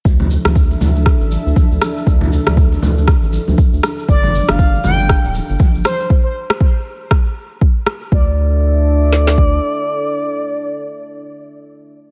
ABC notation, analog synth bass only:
X:1
M:4/4
L:1/16
Q:"Swing 16ths" 1/4=119
K:Gdor
V:1 name="Analog synth bass" clef=bass
D,,2 z D,,2 z D,,2 z A,,, z D,, z D,, z2 | D,,2 z D,,2 z D,,2 z A,,, z D,, z D,, z2 | G,,,2 z G,,,2 z G,,,2 z D,,, z G,,, z G,,, z2 | z16 |
D,,12 z4 | z16 |]